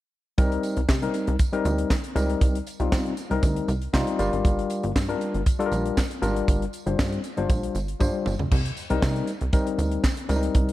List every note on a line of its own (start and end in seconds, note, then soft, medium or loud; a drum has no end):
0.38 0.58 C2 loud
0.38 0.79 G3 medium
0.38 0.80 C4 medium
0.38 0.80 D#4 medium
0.38 0.80 A#4 loud
0.38 kick loud
0.38 closed hi-hat medium
0.38 tambourine soft
0.52 closed hi-hat medium
0.63 closed hi-hat medium
0.63 tambourine medium
0.77 0.86 C2 medium
0.77 closed hi-hat soft
0.89 1.09 C3 loud
0.89 kick loud
0.89 snare loud
0.89 clap medium
0.89 tambourine medium
1.02 1.35 G3 medium
1.02 1.35 C4 medium
1.02 1.35 D#4 medium
1.02 1.35 A#4 medium
1.02 closed hi-hat soft
1.14 closed hi-hat medium
1.14 tambourine soft
1.27 1.37 C2 medium
1.27 closed hi-hat soft
1.39 kick loud
1.39 closed hi-hat medium
1.39 tambourine medium
1.53 1.93 G3 medium
1.53 1.93 C4 medium
1.53 1.94 D#4 medium
1.53 1.94 A#4 loud
1.53 closed hi-hat soft
1.65 1.85 D2 loud
1.65 closed hi-hat medium
1.65 tambourine soft
1.78 closed hi-hat medium
1.90 kick loud
1.90 snare medium
1.90 clap medium
1.90 tambourine medium
2.04 closed hi-hat medium
2.15 2.36 C#2 loud
2.15 2.57 G3 medium
2.15 2.57 C4 medium
2.15 2.57 D#4 medium
2.15 2.57 A#4 medium
2.15 closed hi-hat medium
2.15 tambourine medium
2.29 closed hi-hat soft
2.41 2.61 C2 medium
2.41 kick loud
2.41 closed hi-hat medium
2.41 tambourine soft
2.55 closed hi-hat medium
2.66 closed hi-hat medium
2.66 tambourine medium
2.80 2.89 C2 medium
2.80 3.12 G3 medium
2.80 3.12 C4 medium
2.80 3.13 D#4 medium
2.80 3.13 F4 medium
2.80 closed hi-hat soft
2.92 3.12 C3 medium
2.92 kick loud
2.92 snare loud
2.92 clap medium
2.92 tambourine medium
3.06 closed hi-hat soft
3.17 closed hi-hat medium
3.17 tambourine soft
3.30 3.40 C2 medium
3.30 3.71 G3 medium
3.30 3.71 C4 medium
3.30 3.71 D#4 medium
3.30 3.71 A#4 loud
3.30 closed hi-hat soft
3.43 3.63 D2 medium
3.43 kick loud
3.43 closed hi-hat loud
3.43 tambourine medium
3.56 closed hi-hat soft
3.68 3.88 C2 medium
3.68 closed hi-hat medium
3.68 tambourine soft
3.82 closed hi-hat soft
3.93 4.04 C3 loud
3.93 4.17 G3 medium
3.93 4.19 C4 medium
3.93 4.19 D#4 medium
3.93 4.18 F4 loud
3.93 kick medium
3.93 snare medium
3.93 clap medium
3.93 tambourine medium
4.07 closed hi-hat medium
4.18 4.30 G1 loud
4.18 4.90 G3 medium
4.18 4.91 D4 medium
4.18 4.91 F4 medium
4.18 4.91 A#4 medium
4.18 closed hi-hat medium
4.18 tambourine medium
4.33 4.42 G#1 medium
4.33 closed hi-hat medium
4.45 4.65 G1 medium
4.45 kick loud
4.45 closed hi-hat medium
4.45 tambourine soft
4.59 closed hi-hat medium
4.70 closed hi-hat medium
4.70 tambourine soft
4.83 4.93 G1 medium
4.83 closed hi-hat soft
4.96 5.15 G2 medium
4.96 kick loud
4.96 snare loud
4.96 clap medium
4.96 tambourine medium
5.08 5.41 G3 medium
5.08 5.41 D4 medium
5.08 5.41 F4 medium
5.08 5.41 A#4 medium
5.08 closed hi-hat soft
5.21 closed hi-hat medium
5.34 5.44 G1 medium
5.34 closed hi-hat soft
5.46 kick loud
5.46 closed hi-hat loud
5.46 tambourine medium
5.59 6.00 G3 medium
5.59 6.00 D4 medium
5.59 6.00 F4 medium
5.59 5.66 A4 medium
5.59 closed hi-hat medium
5.66 6.03 A#4 loud
5.72 5.92 A#1 medium
5.72 closed hi-hat medium
5.72 tambourine soft
5.86 closed hi-hat soft
5.97 kick medium
5.97 snare medium
5.97 clap medium
5.97 tambourine medium
6.11 closed hi-hat medium
6.22 6.42 G#1 loud
6.22 6.64 G3 medium
6.22 6.64 D4 medium
6.22 6.64 F4 medium
6.22 6.64 A#4 loud
6.22 closed hi-hat medium
6.22 tambourine medium
6.36 closed hi-hat medium
6.48 6.68 G1 loud
6.48 kick loud
6.48 closed hi-hat loud
6.48 tambourine soft
6.62 closed hi-hat medium
6.73 closed hi-hat medium
6.73 tambourine soft
6.86 6.96 G1 medium
6.86 7.19 G3 medium
6.86 7.19 D4 medium
6.86 7.19 F4 medium
6.86 7.19 C5 medium
6.86 closed hi-hat soft
6.99 7.19 G2 loud
6.99 kick loud
6.99 snare loud
6.99 clap medium
6.99 tambourine medium
7.12 closed hi-hat soft
7.24 closed hi-hat medium
7.24 tambourine soft
7.37 7.47 G1 medium
7.37 7.78 G3 medium
7.37 7.78 D4 medium
7.37 7.78 F4 medium
7.37 7.78 C5 medium
7.37 closed hi-hat soft
7.49 7.70 A#1 medium
7.49 kick loud
7.49 closed hi-hat loud
7.49 tambourine medium
7.63 closed hi-hat medium
7.75 7.95 G1 loud
7.75 closed hi-hat medium
7.75 tambourine soft
7.88 closed hi-hat soft
8.00 8.11 G2 medium
8.00 8.34 G3 medium
8.00 8.34 D4 medium
8.00 8.34 F4 medium
8.00 8.34 C5 medium
8.00 kick medium
8.00 high tom medium
8.00 tambourine medium
8.26 8.36 G1 medium
8.26 mid tom medium
8.26 tambourine medium
8.39 8.49 C#2 medium
8.39 floor tom medium
8.52 8.71 C2 loud
8.52 kick loud
8.52 crash medium
8.52 tambourine soft
8.66 closed hi-hat medium
8.77 closed hi-hat medium
8.77 tambourine medium
8.90 9.00 C2 medium
8.90 9.31 G3 medium
8.90 9.31 C4 medium
8.90 9.31 D#4 medium
8.90 9.31 A#4 medium
8.90 closed hi-hat soft
9.02 9.22 C3 loud
9.02 kick loud
9.02 snare loud
9.02 clap medium
9.02 tambourine medium
9.16 closed hi-hat soft
9.27 closed hi-hat medium
9.27 tambourine soft
9.41 9.51 C2 medium
9.41 closed hi-hat medium
9.53 10.02 G3 medium
9.53 10.02 C4 medium
9.53 10.03 D#4 medium
9.53 10.03 A#4 medium
9.53 kick loud
9.53 closed hi-hat medium
9.53 tambourine medium
9.67 closed hi-hat medium
9.78 9.98 D2 medium
9.78 closed hi-hat medium
9.78 tambourine soft
9.91 closed hi-hat medium
10.04 kick loud
10.04 snare medium
10.04 clap medium
10.04 tambourine medium
10.17 closed hi-hat medium
10.29 10.49 C#2 loud
10.29 10.71 G3 medium
10.29 10.71 C4 medium
10.29 10.36 D4 medium
10.29 10.71 A#4 medium
10.29 closed hi-hat medium
10.29 tambourine medium
10.36 10.72 D#4 medium
10.43 closed hi-hat medium
10.55 10.72 C2 medium
10.55 kick loud
10.55 closed hi-hat medium
10.69 closed hi-hat medium